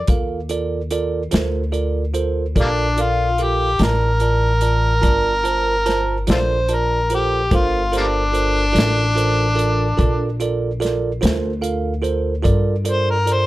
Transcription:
0.07 upright bass D#2, tine electric piano F4 A4 A#4 F5, kick, closed hi-hat
0.49 tine electric piano F4 A4 A#4 D5, closed hi-hat
0.91 tine electric piano F4 A4 A#4 D5, closed hi-hat
1.31 upright bass D2, tine electric piano F4 A4 A#4 C5, snare, closed hi-hat
1.72 tine electric piano F4 A4 A#4 D5, closed hi-hat
2.14 tine electric piano F4 A4 A#4 C5, closed hi-hat
2.56 upright bass A#1, tine electric piano F4 A4 A#4 D5, kick, closed hi-hat
2.60 harmonica G3 A#3 D4
2.97 tine electric piano F4 A4 A#4 D5, closed hi-hat
3.01 harmonica F4
3.38 tine electric piano F4 A4 A#4 F5, closed hi-hat
3.43 harmonica G4
3.79 upright bass A1, tine electric piano F4 A#4 D5 A5, snare, closed hi-hat
3.84 harmonica A#4
4.20 tine electric piano F4 A#4 D5 A5, closed hi-hat
4.61 tine electric piano F4 A#4 D5 A5, closed hi-hat
5.01 upright bass G1, tine electric piano F4 A#4 D5 A5, kick, closed hi-hat
5.44 tine electric piano F4 A#4 C5 A5, closed hi-hat
5.86 tine electric piano F4 A#4 C5 A5, snare, closed hi-hat
6.27 upright bass A#1, tine electric piano F4 A4 A#4 D5, harmonica F4 A4 C5, snare, closed hi-hat
6.69 tine electric piano F4 A#4 D5 A5, closed hi-hat
6.74 harmonica A#4
7.10 tine electric piano F4 A4 A#4 C5, closed hi-hat
7.14 harmonica G4
7.51 upright bass G1, tine electric piano F4 A4 A#4 C5, harmonica F4, kick, closed hi-hat
7.92 tine electric piano F4 A4 A#4 C5, closed hi-hat
7.97 harmonica G3 A#3 D4
8.32 tine electric piano F4 A4 A#4 C5, closed hi-hat
8.73 upright bass A1, tine electric piano F4 A4 A#4 D5, closed hi-hat
8.79 snare
9.15 tine electric piano F4 A4 A#4 C5, closed hi-hat
9.55 tine electric piano F4 A4 A#4 D5, closed hi-hat
9.97 upright bass A#1, tine electric piano F4 A4 A#4 D5, kick, closed hi-hat
10.40 tine electric piano F4 A4 A#4 D5, closed hi-hat
10.80 tine electric piano F4 A4 A#4 D5, closed hi-hat
10.85 snare
11.21 upright bass D2, tine electric piano F4 A4 A#4 C5, closed hi-hat
11.25 snare
11.62 tine electric piano F4 A4 A#4 F5, closed hi-hat
12.02 tine electric piano F4 A4 A#4 C5, closed hi-hat
12.43 upright bass G2, tine electric piano F4 A4 A#4 D5, kick, closed hi-hat
12.85 tine electric piano F4 A4 A#4 D5, closed hi-hat
12.91 harmonica C5
13.11 harmonica A#4
13.25 tine electric piano F4 A4 A#4 D5, closed hi-hat
13.33 harmonica C5

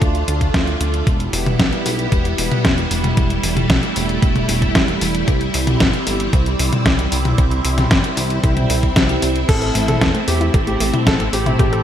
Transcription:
Already playing: string machine A3 D4 F4
0.02 analog synth bass D2, kick, closed hi-hat
0.15 closed hi-hat
0.28 analog synth bass D2, closed hi-hat
0.41 kick, closed hi-hat
0.54 analog synth bass D2, kick, snare, closed hi-hat
0.67 closed hi-hat
0.80 analog synth bass D2, closed hi-hat
0.94 closed hi-hat
1.07 analog synth bass E1, string machine G3 B3 E4, kick, closed hi-hat
1.20 closed hi-hat
1.33 analog synth bass E1, open hi-hat
1.46 closed hi-hat, high tom
1.59 analog synth bass B1, kick, snare, closed hi-hat
1.73 closed hi-hat
1.86 analog synth bass B1, open hi-hat
1.99 closed hi-hat
2.12 analog synth bass E1, kick, closed hi-hat
2.25 closed hi-hat
2.38 analog synth bass E1, open hi-hat
2.52 closed hi-hat, high tom
2.65 analog synth bass E1, kick, snare, closed hi-hat
2.78 closed hi-hat
2.91 analog synth bass E1, open hi-hat
3.04 closed hi-hat, high tom
3.17 analog synth bass E1, string machine A3, kick, closed hi-hat
3.30 closed hi-hat
3.43 analog synth bass E1, open hi-hat
3.57 closed hi-hat, high tom
3.70 analog synth bass B1, kick, snare, closed hi-hat
3.83 closed hi-hat
3.96 analog synth bass E1, open hi-hat
4.09 closed hi-hat
4.22 analog synth bass E1, kick, closed hi-hat
4.36 closed hi-hat, high tom
4.49 analog synth bass E1, open hi-hat
4.62 kick, closed hi-hat
4.75 analog synth bass E1, kick, snare, closed hi-hat
4.88 closed hi-hat
5.01 analog synth bass E1, open hi-hat
5.15 closed hi-hat
5.28 analog synth bass C2, string machine C4, kick, closed hi-hat
5.41 closed hi-hat
5.54 analog synth bass C2, open hi-hat
5.67 closed hi-hat, high tom
5.80 analog synth bass G1, kick, snare, closed hi-hat
5.94 closed hi-hat
6.07 analog synth bass G1, open hi-hat
6.20 closed hi-hat
6.33 analog synth bass C2, kick, closed hi-hat
6.46 closed hi-hat
6.59 analog synth bass C2, open hi-hat
6.73 closed hi-hat, high tom
6.86 analog synth bass C2, kick, snare, closed hi-hat
6.99 closed hi-hat
7.12 analog synth bass C2, open hi-hat
7.25 closed hi-hat, high tom
7.38 analog synth bass C2, kick, closed hi-hat
7.51 closed hi-hat
7.65 analog synth bass C2, open hi-hat
7.78 snare, closed hi-hat, high tom
7.91 analog synth bass G1, kick, snare, closed hi-hat
8.04 closed hi-hat
8.17 analog synth bass C2, open hi-hat
8.30 closed hi-hat
8.44 analog synth bass C2, kick, closed hi-hat
8.57 closed hi-hat, high tom
8.70 analog synth bass C2, open hi-hat
8.83 kick, closed hi-hat
8.96 analog synth bass C2, kick, snare, closed hi-hat
9.09 closed hi-hat
9.22 analog synth bass C2, open hi-hat
9.36 closed hi-hat
9.49 analog synth bass A1, string machine A3, synth arpeggio sound A3, grand piano A4, kick, closed hi-hat, crash
9.62 synth arpeggio sound A4, closed hi-hat
9.75 analog synth bass A1, synth arpeggio sound A2, open hi-hat
9.88 synth arpeggio sound E4, grand piano A4, closed hi-hat, high tom
10.01 analog synth bass E2, synth arpeggio sound A3, kick, snare, closed hi-hat
10.14 synth arpeggio sound A3, closed hi-hat
10.28 analog synth bass E2, synth arpeggio sound E3, grand piano G4, open hi-hat
10.41 synth arpeggio sound E4, closed hi-hat
10.54 analog synth bass A1, synth arpeggio sound A4, kick, closed hi-hat
10.67 synth arpeggio sound A3, grand piano G4, closed hi-hat
10.80 analog synth bass A1, synth arpeggio sound A3, open hi-hat
10.93 synth arpeggio sound E4, closed hi-hat, high tom
11.07 analog synth bass A1, synth arpeggio sound A3, grand piano A4, kick, snare, closed hi-hat
11.20 synth arpeggio sound A3, closed hi-hat
11.33 analog synth bass A1, synth arpeggio sound C4, grand piano G4, open hi-hat
11.46 synth arpeggio sound E4, closed hi-hat, high tom
11.59 analog synth bass A1, synth arpeggio sound A3, grand piano G4, kick, closed hi-hat
11.73 synth arpeggio sound A4, closed hi-hat

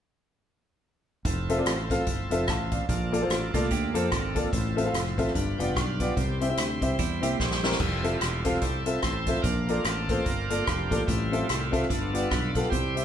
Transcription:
1.25 fingered electric bass F1, tonewheel organ F3 C4 E4 A4, kick, closed hi-hat
1.49 grand piano C4 F4 A4 E5, closed hi-hat
1.58 grand piano C4 F4 A4 D5
1.66 fingered electric bass A1, cross-stick, closed hi-hat
1.90 grand piano C4 F4 A4 F5, kick, closed hi-hat
2.07 fingered electric bass G1, kick, closed hi-hat
2.30 fingered electric bass F1, grand piano C4 F4 A4 E5, closed hi-hat
2.48 fingered electric bass A1, grand piano A5, kick, cross-stick, closed hi-hat
2.72 grand piano D5 F5, kick, closed hi-hat
2.89 fingered electric bass A#1, grand piano A#2, tonewheel organ F3 A#3 D4 A4, kick, closed hi-hat
3.12 grand piano A#3 F4 A4 D5, closed hi-hat
3.22 grand piano A#3 F4 A4 C5
3.29 fingered electric bass A1, cross-stick, closed hi-hat
3.54 fingered electric bass C2, clean electric guitar A3 F4, grand piano A#3 F4 A4 D5, kick, closed hi-hat
3.63 cross-stick
3.71 fingered electric bass D2, clean electric guitar A#3 G4, kick, closed hi-hat
3.94 fingered electric bass F2, grand piano A#3 F4 A4 C5, clean electric guitar C4 A4, closed hi-hat
4.12 fingered electric bass G#1, kick, cross-stick, closed hi-hat
4.35 grand piano A#3 F4 A4 D5, kick, closed hi-hat
4.52 fingered electric bass A1, grand piano A2, tonewheel organ F3 C4 E4 A4, kick, closed hi-hat
4.76 grand piano C4 F4 A4 E5, closed hi-hat
4.85 grand piano C4 F4 A4 F5
4.93 fingered electric bass F1, cross-stick, closed hi-hat
5.18 fingered electric bass A1, grand piano C4 F4 A4 E5, kick, closed hi-hat
5.28 cross-stick
5.34 fingered electric bass G1, grand piano G2, tonewheel organ G3 D4 F4 B4, kick, closed hi-hat
5.58 fingered electric bass F1, grand piano B3 F4 G4 D5, tonewheel organ G5, closed hi-hat
5.75 fingered electric bass B1, tonewheel organ F5, kick, cross-stick, closed hi-hat
6.00 grand piano B3 F4 G4 D5, tonewheel organ D5, kick, closed hi-hat
6.16 fingered electric bass C2, grand piano C3, tonewheel organ G3 C4 E4 A#4, kick, closed hi-hat
6.21 tonewheel organ C5
6.41 grand piano C4 E4 G4 E5, closed hi-hat
6.49 grand piano C4 E4 G4 E5
6.57 fingered electric bass D2, cross-stick, closed hi-hat
6.81 fingered electric bass C2, grand piano C4 E4 G4 E5, kick, closed hi-hat
6.99 fingered electric bass E2, clean electric guitar G3 E4, kick, closed hi-hat
7.21 fingered electric bass C2, clean electric guitar A#3 G4, grand piano C4 E4 G4 E5, closed hi-hat
7.39 fingered electric bass A#1, tonewheel organ C4 E4 G4, clean electric guitar E4 C5, kick, snare
7.51 snare
7.63 grand piano C4 E4 G4 A#4, snare
7.72 snare
7.80 fingered electric bass F1, tonewheel organ G3 A3 C4 E4 F4, kick, crash
8.03 grand piano C4 F4 A4 E5, closed hi-hat
8.21 fingered electric bass E1, cross-stick, closed hi-hat
8.45 grand piano C4 F4 A4 F5, kick, closed hi-hat
8.54 cross-stick
8.61 fingered electric bass C2, tonewheel organ G3 A3 C4 E4 A4, kick, closed hi-hat
8.86 grand piano C4 F4 A4 E5, closed hi-hat
9.02 fingered electric bass A1, tonewheel organ E4 A4 C5, kick, cross-stick, closed hi-hat
9.26 grand piano C4 F4 A4 E5, kick, closed hi-hat
9.35 cross-stick
9.42 fingered electric bass A#1, grand piano A#2, tonewheel organ D4 F4 A#4, kick, closed hi-hat
9.67 tonewheel organ A#3 C4 D4, grand piano A#3 F4 A4 D5, closed hi-hat
9.83 fingered electric bass A1, tonewheel organ D4 F4 A4, cross-stick, closed hi-hat
10.09 grand piano A#3 F4 A4 C5, kick, closed hi-hat
10.23 fingered electric bass G1, tonewheel organ D4 F4 A#4, kick, closed hi-hat
10.50 grand piano A#3 F4 A4 D5, closed hi-hat
10.64 fingered electric bass F1, tonewheel organ D4 G4, kick, cross-stick, closed hi-hat
10.91 fingered electric bass A1, grand piano A#3 F4 A4 D5, kick, closed hi-hat
11.06 fingered electric bass A1, grand piano A2, tonewheel organ G3 A3 C4 E4 F4, kick, closed hi-hat
11.32 grand piano C4 F4 A4 E5, closed hi-hat
11.49 fingered electric bass C2, cross-stick, closed hi-hat
11.72 grand piano C4 F4 A4 E5, kick, closed hi-hat
11.83 cross-stick
11.89 fingered electric bass G1, grand piano G2, tonewheel organ A3 B3 D4 F4 A4, kick, closed hi-hat
12.13 grand piano B3 F4 G4 D5, closed hi-hat
12.30 fingered electric bass B1, tonewheel organ D4 F4 B4, kick, cross-stick, closed hi-hat
12.55 grand piano B3 F4 G4 A4, kick, closed hi-hat
12.63 cross-stick
12.69 fingered electric bass C2, grand piano C3, tonewheel organ G3 C4 E4 G4 C5, kick, closed hi-hat
12.95 grand piano C4 E4 G4 E5, closed hi-hat

